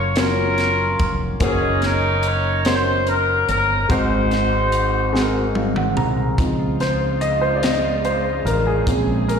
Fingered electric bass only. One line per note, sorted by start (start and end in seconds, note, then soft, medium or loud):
0.00 0.95 F#1 medium
1.00 1.38 F1 medium
1.40 3.44 F#1 medium
3.49 3.86 G1 medium
3.90 5.93 G#1 medium
5.97 6.35 C2 medium
6.38 8.41 C#2 medium
8.45 8.83 A1 medium
8.87 9.39 A#1 medium